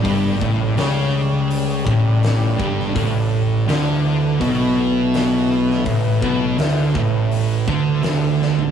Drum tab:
HH |o---o---o---o---|o---o---o---o---|o---o---o---o---|
SD |----o-------o--o|----o-------o--o|----o-------o-o-|
FT |----------------|----------------|---------------o|
BD |o-o-------o---o-|o-------o-------|o-o---o---o-----|